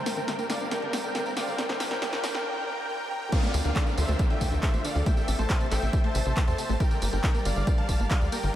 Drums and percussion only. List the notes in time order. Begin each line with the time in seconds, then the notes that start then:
0.06 snare, open hi-hat, tambourine
0.17 closed hi-hat, tambourine
0.28 snare, closed hi-hat, tambourine
0.39 closed hi-hat, tambourine
0.50 snare, open hi-hat, tambourine
0.61 closed hi-hat, tambourine
0.71 snare, closed hi-hat, tambourine
0.82 closed hi-hat
0.93 snare, open hi-hat, tambourine
1.04 closed hi-hat, tambourine
1.15 snare, closed hi-hat, tambourine
1.26 closed hi-hat, tambourine
1.37 snare, open hi-hat, tambourine
1.48 tambourine
1.58 snare, closed hi-hat, tambourine
1.69 snare, closed hi-hat, tambourine
1.80 snare, open hi-hat, tambourine
1.91 snare, closed hi-hat, tambourine
2.02 snare, closed hi-hat, tambourine
2.13 snare, closed hi-hat, tambourine
2.24 snare, open hi-hat, tambourine
2.35 snare, closed hi-hat, tambourine
3.32 kick, closed hi-hat, crash, tambourine
3.43 closed hi-hat, tambourine
3.54 open hi-hat, tambourine
3.65 closed hi-hat, tambourine
3.76 kick, clap, closed hi-hat, tambourine
3.87 closed hi-hat, tambourine
3.98 open hi-hat, tambourine
4.08 closed hi-hat, tambourine
4.19 kick, closed hi-hat, tambourine
4.30 closed hi-hat
4.41 kick, open hi-hat, tambourine
4.52 closed hi-hat, tambourine
4.63 kick, clap, closed hi-hat, tambourine
4.74 closed hi-hat, tambourine
4.85 open hi-hat, tambourine
4.95 tambourine
5.06 kick, closed hi-hat, tambourine
5.17 closed hi-hat, tambourine
5.28 open hi-hat, tambourine
5.39 closed hi-hat, tambourine
5.50 kick, clap, closed hi-hat, tambourine
5.61 closed hi-hat, tambourine
5.71 clap, open hi-hat, tambourine
5.82 closed hi-hat, tambourine
5.93 kick, closed hi-hat, tambourine
6.04 closed hi-hat
6.15 open hi-hat, tambourine
6.26 closed hi-hat, tambourine
6.37 kick, clap, closed hi-hat, tambourine
6.48 closed hi-hat, tambourine
6.58 open hi-hat, tambourine
6.69 tambourine
6.80 kick, closed hi-hat, tambourine
6.91 closed hi-hat, tambourine
7.02 open hi-hat, tambourine
7.13 closed hi-hat, tambourine
7.24 kick, clap, closed hi-hat, tambourine
7.34 closed hi-hat, tambourine
7.45 open hi-hat, tambourine
7.56 closed hi-hat, tambourine
7.67 kick, closed hi-hat, tambourine
7.78 closed hi-hat
7.89 kick, open hi-hat, tambourine
8.00 closed hi-hat, tambourine
8.11 kick, clap, closed hi-hat, tambourine
8.21 closed hi-hat, tambourine
8.32 open hi-hat, tambourine
8.43 tambourine